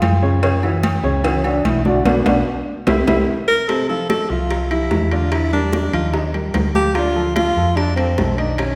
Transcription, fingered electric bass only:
0, 0, Header, 1, 2, 480
1, 0, Start_track
1, 0, Tempo, 407886
1, 506, Time_signature, 4, 2, 24, 8
1, 10301, End_track
2, 0, Start_track
2, 0, Title_t, "Fingered electric bass"
2, 0, Program_c, 0, 33
2, 20, Note_on_c, 0, 42, 102
2, 1149, Note_off_c, 0, 42, 0
2, 1218, Note_on_c, 0, 37, 96
2, 1892, Note_off_c, 0, 37, 0
2, 1939, Note_on_c, 0, 35, 107
2, 2386, Note_off_c, 0, 35, 0
2, 2418, Note_on_c, 0, 35, 99
2, 2598, Note_off_c, 0, 35, 0
2, 2660, Note_on_c, 0, 35, 102
2, 2838, Note_off_c, 0, 35, 0
2, 3378, Note_on_c, 0, 36, 108
2, 3557, Note_off_c, 0, 36, 0
2, 3616, Note_on_c, 0, 36, 117
2, 3796, Note_off_c, 0, 36, 0
2, 5060, Note_on_c, 0, 36, 83
2, 5734, Note_off_c, 0, 36, 0
2, 5781, Note_on_c, 0, 40, 89
2, 6911, Note_off_c, 0, 40, 0
2, 6980, Note_on_c, 0, 39, 89
2, 7655, Note_off_c, 0, 39, 0
2, 7701, Note_on_c, 0, 38, 84
2, 8832, Note_off_c, 0, 38, 0
2, 8904, Note_on_c, 0, 41, 90
2, 9578, Note_off_c, 0, 41, 0
2, 9624, Note_on_c, 0, 35, 90
2, 10301, Note_off_c, 0, 35, 0
2, 10301, End_track
0, 0, End_of_file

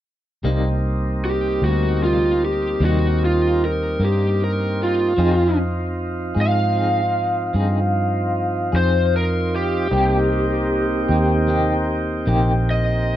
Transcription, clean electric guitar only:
0, 0, Header, 1, 2, 480
1, 0, Start_track
1, 0, Key_signature, -3, "minor"
1, 0, Tempo, 789474
1, 271, Time_signature, 12, 3, 24, 8
1, 8004, End_track
2, 0, Start_track
2, 0, Title_t, "Clean electric guitar"
2, 0, Program_c, 0, 27
2, 263, Note_on_c, 0, 48, 76
2, 268, Note_on_c, 0, 55, 86
2, 272, Note_on_c, 0, 58, 94
2, 274, Note_on_c, 0, 63, 90
2, 411, Note_off_c, 0, 48, 0
2, 413, Note_off_c, 0, 55, 0
2, 415, Note_off_c, 0, 58, 0
2, 416, Note_off_c, 0, 63, 0
2, 978, Note_on_c, 0, 63, 49
2, 991, Note_on_c, 0, 58, 41
2, 1001, Note_on_c, 0, 55, 37
2, 1128, Note_off_c, 0, 63, 0
2, 1134, Note_off_c, 0, 58, 0
2, 1139, Note_off_c, 0, 55, 0
2, 1225, Note_on_c, 0, 48, 56
2, 1234, Note_on_c, 0, 55, 53
2, 1238, Note_on_c, 0, 58, 51
2, 1246, Note_on_c, 0, 63, 61
2, 1371, Note_off_c, 0, 48, 0
2, 1376, Note_off_c, 0, 55, 0
2, 1377, Note_off_c, 0, 58, 0
2, 1381, Note_off_c, 0, 63, 0
2, 1705, Note_on_c, 0, 48, 63
2, 1712, Note_on_c, 0, 55, 60
2, 1714, Note_on_c, 0, 58, 58
2, 1720, Note_on_c, 0, 63, 69
2, 1851, Note_off_c, 0, 48, 0
2, 1854, Note_off_c, 0, 55, 0
2, 1855, Note_off_c, 0, 58, 0
2, 1858, Note_off_c, 0, 63, 0
2, 2422, Note_on_c, 0, 63, 45
2, 2431, Note_on_c, 0, 58, 52
2, 2441, Note_on_c, 0, 55, 41
2, 2569, Note_off_c, 0, 63, 0
2, 2574, Note_off_c, 0, 58, 0
2, 2579, Note_off_c, 0, 55, 0
2, 3141, Note_on_c, 0, 53, 83
2, 3149, Note_on_c, 0, 60, 83
2, 3153, Note_on_c, 0, 63, 87
2, 3156, Note_on_c, 0, 68, 84
2, 3289, Note_off_c, 0, 53, 0
2, 3293, Note_off_c, 0, 60, 0
2, 3294, Note_off_c, 0, 63, 0
2, 3296, Note_off_c, 0, 68, 0
2, 3859, Note_on_c, 0, 68, 50
2, 3872, Note_on_c, 0, 63, 45
2, 3877, Note_on_c, 0, 60, 37
2, 4007, Note_off_c, 0, 68, 0
2, 4014, Note_off_c, 0, 63, 0
2, 4016, Note_off_c, 0, 60, 0
2, 4105, Note_on_c, 0, 53, 45
2, 4111, Note_on_c, 0, 60, 57
2, 4118, Note_on_c, 0, 63, 58
2, 4125, Note_on_c, 0, 68, 51
2, 4250, Note_off_c, 0, 53, 0
2, 4253, Note_off_c, 0, 60, 0
2, 4257, Note_off_c, 0, 63, 0
2, 4260, Note_off_c, 0, 68, 0
2, 4582, Note_on_c, 0, 53, 68
2, 4585, Note_on_c, 0, 60, 67
2, 4590, Note_on_c, 0, 63, 75
2, 4596, Note_on_c, 0, 68, 76
2, 4729, Note_off_c, 0, 53, 0
2, 4730, Note_off_c, 0, 60, 0
2, 4733, Note_off_c, 0, 63, 0
2, 4736, Note_off_c, 0, 68, 0
2, 5304, Note_on_c, 0, 68, 54
2, 5316, Note_on_c, 0, 63, 44
2, 5323, Note_on_c, 0, 60, 39
2, 5450, Note_off_c, 0, 68, 0
2, 5456, Note_off_c, 0, 63, 0
2, 5459, Note_off_c, 0, 60, 0
2, 6028, Note_on_c, 0, 48, 77
2, 6032, Note_on_c, 0, 58, 76
2, 6035, Note_on_c, 0, 63, 80
2, 6038, Note_on_c, 0, 67, 95
2, 6171, Note_off_c, 0, 48, 0
2, 6174, Note_off_c, 0, 58, 0
2, 6175, Note_off_c, 0, 63, 0
2, 6177, Note_off_c, 0, 67, 0
2, 6740, Note_on_c, 0, 67, 55
2, 6755, Note_on_c, 0, 63, 51
2, 6761, Note_on_c, 0, 58, 44
2, 6887, Note_off_c, 0, 67, 0
2, 6895, Note_off_c, 0, 63, 0
2, 6898, Note_off_c, 0, 58, 0
2, 6974, Note_on_c, 0, 48, 56
2, 6980, Note_on_c, 0, 58, 61
2, 6987, Note_on_c, 0, 63, 70
2, 6993, Note_on_c, 0, 67, 74
2, 7124, Note_off_c, 0, 48, 0
2, 7127, Note_off_c, 0, 58, 0
2, 7131, Note_off_c, 0, 63, 0
2, 7134, Note_off_c, 0, 67, 0
2, 7453, Note_on_c, 0, 48, 67
2, 7461, Note_on_c, 0, 58, 81
2, 7465, Note_on_c, 0, 63, 74
2, 7470, Note_on_c, 0, 67, 80
2, 7604, Note_off_c, 0, 48, 0
2, 7608, Note_off_c, 0, 58, 0
2, 7609, Note_off_c, 0, 63, 0
2, 7612, Note_off_c, 0, 67, 0
2, 8004, End_track
0, 0, End_of_file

